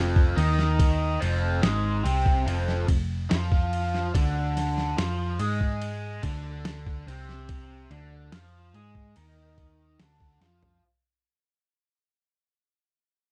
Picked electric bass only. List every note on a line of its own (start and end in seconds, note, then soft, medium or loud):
0.00 0.33 F1 medium
0.37 1.17 D#2 medium
1.22 1.60 F1 medium
1.63 2.02 G#1 loud
2.05 2.44 C2 loud
2.47 2.85 F1 medium
2.88 3.27 F1 medium
3.32 4.11 F2 medium
4.14 4.94 D2 loud
4.98 5.37 F2 loud
5.40 6.19 G#2 loud
6.24 7.03 D2 medium
7.07 7.86 C2 medium
7.91 8.30 D2 loud
8.33 8.71 F2 loud
8.74 9.13 G#2 loud
9.17 9.96 D#2 medium
10.00 10.39 D2 medium
10.41 10.80 F2 medium